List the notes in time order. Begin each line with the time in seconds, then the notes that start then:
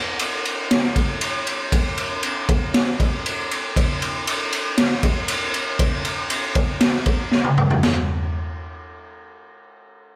0.19 ride
0.45 ride
0.71 snare, ride
0.83 snare
0.96 kick, ride
1.21 ride
1.47 ride
1.72 kick, ride
1.98 ride
2.23 ride
2.49 kick, ride
2.74 snare, ride
3.00 kick, ride
3.26 ride
3.51 ride
3.76 kick, ride
4.02 ride
4.27 ride
4.53 ride
4.78 snare, ride
4.91 snare
5.03 kick, ride
5.28 ride
5.54 ride
5.79 kick, ride
6.05 ride
6.30 ride
6.55 kick, ride
6.81 snare, ride
6.94 snare
7.06 kick, ride
7.31 snare
7.44 high tom
7.58 mid tom
7.70 floor tom
7.83 snare, floor tom, crash